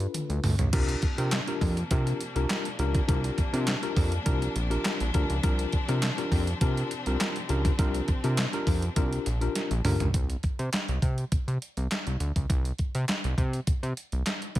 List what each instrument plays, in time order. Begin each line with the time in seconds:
Already playing: tine electric piano D4 F4 A4 B4
0.00 closed hi-hat
0.14 closed hi-hat, high tom
0.29 analog synth bass D2, closed hi-hat
0.44 analog synth bass D2, mid tom, open hi-hat
0.59 analog synth bass C#2, closed hi-hat, floor tom
0.73 analog synth bass C2, string section C3 F3 A#3 D4, tine electric piano D4 F4 G4 A#4, kick, closed hi-hat, crash
0.89 closed hi-hat
1.02 kick, closed hi-hat
1.18 analog synth bass C3, tine electric piano D4 F4 G4 A#4, closed hi-hat
1.31 snare, clap, closed hi-hat
1.47 tine electric piano D4 F4 G4 A#4, closed hi-hat
1.61 analog synth bass F2, kick, open hi-hat
1.77 closed hi-hat
1.91 analog synth bass C3, tine electric piano D4 F4 G4 A#4, kick, closed hi-hat
2.07 closed hi-hat
2.21 closed hi-hat
2.35 analog synth bass C2, tine electric piano D4 F4 G4 A#4, closed hi-hat
2.50 snare, clap, closed hi-hat
2.65 closed hi-hat
2.79 analog synth bass C#2, tine electric piano D4 F4 G4 A#4, closed hi-hat
2.94 kick, closed hi-hat
3.08 analog synth bass C2, tine electric piano D4 F4 G4 A#4, kick, closed hi-hat
3.24 closed hi-hat
3.38 kick, closed hi-hat
3.53 analog synth bass C3, tine electric piano D4 F4 G4 A#4, closed hi-hat
3.67 snare, clap, closed hi-hat
3.82 tine electric piano D4 F4 G4 A#4, closed hi-hat
3.96 analog synth bass F2, kick, open hi-hat
4.12 closed hi-hat
4.25 analog synth bass C2, tine electric piano D4 F4 G4 A#4, kick, closed hi-hat
4.42 closed hi-hat
4.56 analog synth bass A#1, closed hi-hat
4.70 tine electric piano D4 F4 G4 A#4, closed hi-hat
4.85 snare, clap, closed hi-hat
5.00 analog synth bass A#1, closed hi-hat
5.14 analog synth bass D2, tine electric piano D4 F4 G4 A#4, kick, closed hi-hat
5.30 analog synth bass C#2, closed hi-hat
5.43 analog synth bass C2, string section C4, tine electric piano D4 F4 G4 A#4, kick, closed hi-hat
5.59 closed hi-hat
5.72 kick, closed hi-hat
5.88 analog synth bass C3, tine electric piano D4 F4 G4 A#4, closed hi-hat
6.02 snare, clap, closed hi-hat
6.17 tine electric piano D4 F4 G4 A#4, closed hi-hat
6.32 analog synth bass F2, kick, open hi-hat
6.47 closed hi-hat
6.61 analog synth bass C3, tine electric piano D4 F4 G4 A#4, kick, closed hi-hat
6.77 closed hi-hat
6.91 closed hi-hat
7.06 analog synth bass C2, tine electric piano D4 F4 G4 A#4, closed hi-hat
7.20 snare, clap, closed hi-hat
7.36 closed hi-hat
7.49 analog synth bass C#2, tine electric piano D4 F4 G4 A#4, closed hi-hat
7.65 kick, closed hi-hat
7.79 analog synth bass C2, tine electric piano D4 F4 G4 A#4, kick, closed hi-hat
7.94 closed hi-hat
8.08 kick, closed hi-hat
8.24 analog synth bass C3, tine electric piano D4 F4 G4 A#4, closed hi-hat
8.37 snare, clap, closed hi-hat
8.53 tine electric piano D4 F4 G4 A#4, closed hi-hat
8.67 analog synth bass F2, kick, open hi-hat
8.82 closed hi-hat
8.96 analog synth bass C2, tine electric piano D4 F4 G4 A#4, kick, closed hi-hat
9.13 closed hi-hat
9.26 analog synth bass A#1, closed hi-hat
9.41 tine electric piano D4 F4 G4 A#4, closed hi-hat
9.55 snare, closed hi-hat
9.71 analog synth bass A#1, closed hi-hat
9.84 analog synth bass D2, tine electric piano D4 F4 G4 A#4, mid tom, open hi-hat
10.00 analog synth bass C#2, closed hi-hat, floor tom
10.14 analog synth bass C2, kick, closed hi-hat
10.30 closed hi-hat
10.43 kick, closed hi-hat
10.59 analog synth bass C3, closed hi-hat
10.73 snare, clap, closed hi-hat
10.88 analog synth bass C2, closed hi-hat
11.02 analog synth bass C3, kick, closed hi-hat
11.18 closed hi-hat
11.32 analog synth bass C3, kick, closed hi-hat
11.48 analog synth bass C3, closed hi-hat
11.62 closed hi-hat
11.77 analog synth bass C2, closed hi-hat
11.91 snare, clap, closed hi-hat
12.07 analog synth bass C2, closed hi-hat
12.20 analog synth bass D2, closed hi-hat
12.36 analog synth bass C#2, kick, closed hi-hat
12.50 analog synth bass C2, kick, closed hi-hat
12.65 closed hi-hat
12.78 kick, closed hi-hat
12.95 analog synth bass C3, closed hi-hat
13.08 snare, clap, closed hi-hat
13.24 analog synth bass C2, closed hi-hat
13.38 analog synth bass C3, kick, closed hi-hat
13.53 closed hi-hat
13.67 analog synth bass C3, kick, closed hi-hat
13.83 analog synth bass C3, closed hi-hat
13.97 closed hi-hat
14.12 analog synth bass C2, closed hi-hat
14.26 snare, clap, closed hi-hat
14.42 closed hi-hat
14.55 analog synth bass C#2, kick, closed hi-hat